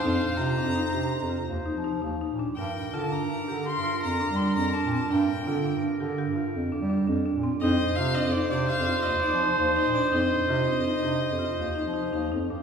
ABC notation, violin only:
X:1
M:7/4
L:1/8
Q:1/4=166
K:Fmix
V:1 name="Violin"
f2 b6 z6 | g2 a b3 c'2 b2 c' b a a | g4 z8 z2 | e2 f e d d f2 e d c2 e d |
e12 z2 |]